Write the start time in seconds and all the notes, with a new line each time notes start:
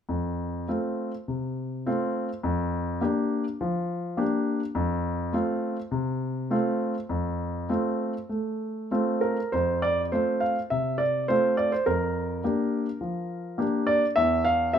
0.09 F2
0.68 A3 C4 F4
1.28 C3
1.86 A3 C4 F4
2.43 F2
3.01 A#3 D4 G4
3.61 F3
4.17 A#3 D4 G4
4.75 F2
5.33 A3 C4 F4
5.91 C3
6.50 A3 C4 F4
7.09 F2
7.69 A3 C4 F4
8.29 A3
8.91 A3 C4 F4
9.21 A#4
9.52 F2 C5
9.82 D5
10.12 A3 C4 F4 C5
10.40 F5
10.70 C3 E5
10.98 D5
11.28 A3 C4 F4 C5
11.57 D5
11.72 C5
11.86 F2 A#4
12.44 A#3 D4 G4
13.01 F3
13.58 A#3 D4 G4
13.87 D5
14.16 E2 E5
14.45 F5
14.73 C4 G4 E5